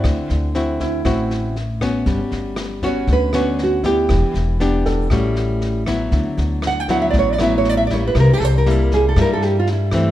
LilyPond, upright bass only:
\new Staff \with { instrumentName = "Upright bass" } { \clef bass \time 4/4 \key d \major \tempo 4 = 118 d,16 r16 d,4. a,,2 | g,,16 r16 g,,4. d,2 | e,,16 r16 e,,4. a,,2 | d,16 r16 d,4. a,,2 |
c,16 r16 c,4. g,2 | }